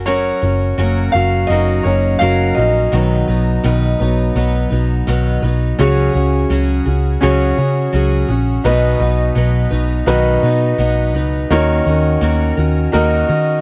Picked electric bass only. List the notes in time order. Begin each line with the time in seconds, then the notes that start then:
Already playing: F#1
0.43 F#1
0.78 F#1
1.15 F#1
1.50 F#1
1.86 F#1
2.22 F#1
2.57 A#1
2.93 B1
3.28 B1
3.64 B1
4.01 B1
4.36 B1
4.72 B1
5.08 B1
5.43 B1
5.79 C#2
6.15 C#2
6.50 C#2
6.87 C#2
7.23 C#2
7.58 C#3
7.94 C#2
8.29 A#1
8.65 B1
9.00 B1
9.36 B1
9.72 B1
10.07 B1
10.43 B2
10.79 B1
11.15 C#2
11.51 D#2
11.87 D#2
12.22 D#2
12.58 D#2
12.94 D#2
13.30 D#3